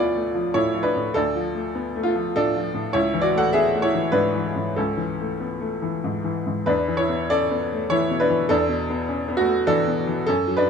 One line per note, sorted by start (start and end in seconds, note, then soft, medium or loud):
0.00 1.12 D2 soft
0.00 0.35 F3 soft
0.00 0.16 A3 soft
0.00 0.17 B3 soft
0.00 0.84 D4 medium
0.00 0.54 E4 medium
0.00 0.52 F4 medium
0.00 0.83 B4 medium
0.00 0.54 C#5 medium
0.00 0.56 D5 medium
0.16 0.48 A3 soft
0.35 0.67 F3 medium
0.54 0.87 A2 medium
0.54 0.83 E4 medium
0.54 0.85 C#5 medium
0.74 1.08 F3 soft
0.83 1.13 D4 medium
0.83 1.15 B4 medium
0.96 1.28 A2 soft
1.14 2.89 D2 medium
1.14 2.01 D4 medium
1.14 2.04 A4 medium
1.35 1.67 F3 medium
1.55 1.87 A3 soft
1.75 1.95 B3 soft
1.95 2.03 A3 medium
2.03 2.32 A3 medium
2.03 2.34 F4 medium
2.15 2.47 F3 medium
2.36 2.67 A2 medium
2.36 2.91 D4 medium
2.36 2.94 A4 medium
2.57 2.87 F3 soft
2.74 2.94 A2 soft
2.93 4.73 C#2 medium
2.93 3.21 E4 medium
2.93 3.23 C#5 medium
3.14 3.45 E3 medium
3.21 3.37 F#4 medium
3.21 3.37 D5 medium
3.35 3.66 A3 medium
3.35 3.52 A4 medium
3.35 3.53 F#5 medium
3.53 3.73 B3 soft
3.53 3.82 G#4 medium
3.53 3.83 E5 loud
3.75 4.07 A3 medium
3.82 4.12 E4 medium
3.82 4.13 C#5 medium
3.94 4.27 E3 medium
4.12 4.47 G#2 medium
4.12 4.73 D4 medium
4.12 4.76 B4 medium
4.35 4.68 E3 soft
4.56 4.90 G#2 soft
4.76 6.64 C#2 medium
4.76 6.00 C#4 medium
4.76 6.03 A4 medium
4.97 5.31 E3 soft
5.20 5.53 A3 soft
5.40 5.61 B3 soft
5.60 5.95 A3 soft
5.82 6.16 E3 soft
6.04 6.38 G#2 soft
6.24 6.59 E3 soft
6.47 6.68 G#2 soft
6.66 8.44 E2 medium
6.66 6.97 D4 medium
6.66 6.99 B4 medium
6.88 7.22 E3 soft
6.97 7.28 E4 medium
6.97 7.29 C#5 medium
7.09 7.42 B3 soft
7.30 7.51 C#4 soft
7.30 7.86 A4 medium
7.30 7.90 D5 medium
7.51 7.83 B3 medium
7.73 8.03 A3 medium
7.90 8.21 E3 medium
7.90 8.18 E4 medium
7.90 8.19 C#5 loud
8.11 8.41 B2 soft
8.20 8.48 D4 medium
8.20 8.49 B4 medium
8.30 8.61 E3 medium
8.49 10.23 E2 medium
8.49 9.36 D4 medium
8.49 9.39 A4 loud
8.69 9.01 B2 medium
8.90 9.21 B3 medium
9.09 9.29 C#4 soft
9.28 9.60 B3 medium
9.37 9.46 A3 medium
9.37 9.67 F#4 loud
9.47 9.79 A3 medium
9.67 9.99 E3 medium
9.67 10.22 D4 medium
9.67 10.25 A4 loud
9.87 10.19 B2 soft
10.07 10.27 E3 soft
10.27 10.70 F#2 medium
10.27 10.55 C#4 medium
10.27 10.56 A4 loud
10.47 10.70 F#3 medium
10.57 10.70 D4 medium
10.57 10.70 B4 medium
10.66 10.70 C#3 soft